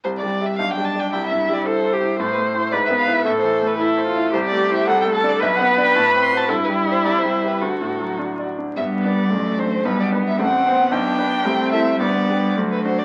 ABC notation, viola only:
X:1
M:2/4
L:1/8
Q:1/4=111
K:C
V:1 name="Viola"
z2 D2 | E2 A G | c2 B2 | A2 E F |
[K:G] G2 A2 | B4 | E4 | F3 z |
B,2 A,2 | B,2 C2 | D2 C2 | B,2 A, z |]